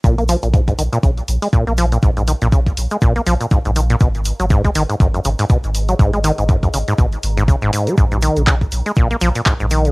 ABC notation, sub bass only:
X:1
M:4/4
L:1/16
Q:"Swing 16ths" 1/4=121
K:Abdor
V:1 name="Sub bass" clef=bass
B,,,2 z B,,,2 z B,,, z B,,, z B,,, z2 B,,,2 z | B,,,2 z B,,,2 z B,,, z B,,, z B,,, z2 B,,,2 z | A,,,2 z A,,,2 z A,,, z A,,, z A,,, z2 A,,,2 z | A,,,2 z A,,,2 z A,,, z A,,, z A,,,2 z G,,, z2 |
B,,,2 z B,,,2 z B,,, z B,,, z B,,, z2 B,,,2 z |]